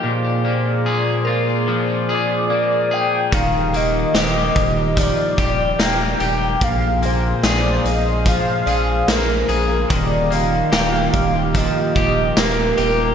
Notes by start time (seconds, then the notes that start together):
Already playing: F3 A#3 F4 G4
0.03 A#2 G#4 C5 D5
0.45 A#3
0.86 G#4
1.25 F4 A#4
1.68 F3
2.09 G#4 D5
2.50 A#3
2.91 G#4 G5
3.31 D#1 D#3 D#4 G4 F5, kick, closed hi-hat
3.73 A#3 D#5, closed hi-hat
4.14 D#1 G4 C5, snare, closed hi-hat
4.56 D#1, kick, closed hi-hat
4.97 F3 D5, kick, closed hi-hat
5.38 D#1 G4, kick, closed hi-hat
5.79 D#1 A#3 G5, snare, closed hi-hat
6.20 D#1 G4, closed hi-hat
6.61 A#1 A#2 G#4 C5 F5, kick, closed hi-hat
7.02 A#3 C5, closed hi-hat
7.43 A#1 G#4 D5, snare, closed hi-hat
7.85 A#1 D#5, closed hi-hat
8.26 F3 F5, kick, closed hi-hat
8.66 A#1 G#4 D5, closed hi-hat
9.08 A#1 A#3 A#4, snare, closed hi-hat
9.49 A#1 G#4, closed hi-hat
9.90 D#1 D#3 A#3 D#4 F4 G4 D5, kick, closed hi-hat
10.30 A#3 F5, closed hi-hat
10.72 D#1 G4, snare, closed hi-hat
11.14 D#1, kick, closed hi-hat
11.54 F3 D#5, kick, closed hi-hat
11.96 D#1 G4, kick, closed hi-hat
12.37 D#1 A#3 A#4, snare, closed hi-hat
12.77 D#1 G4 A#4, closed hi-hat